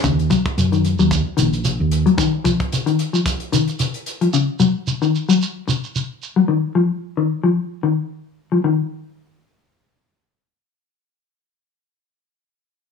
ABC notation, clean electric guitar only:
X:1
M:4/4
L:1/16
Q:"Swing 16ths" 1/4=112
K:Ebm
V:1 name="Clean electric guitar" clef=bass
D,2 G,2 z E,2 G,2 z E,2 z3 G, | E,2 F,2 z E,2 F,2 z E,2 z3 F, | D,2 G,2 z E,2 G,2 z6 G, | E,2 F,2 z E,2 F,2 z E,2 z3 F, |
E,2 z12 z2 | z16 |]